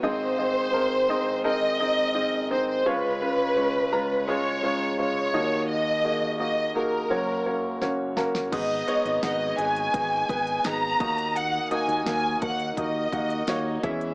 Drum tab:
CC |----------------|----------------|----------------|x---------------|
HH |----------------|----------------|----------------|x-xxx-xxx-xxx-xx|
SD |----------------|----------------|------------o-oo|----o-------o---|
BD |----------------|----------------|----------------|o-------o-o---o-|

CC |----------------|
HH |x-xxx-xxx-xxx-xx|
SD |----o-------o---|
BD |------o-o-o---o-|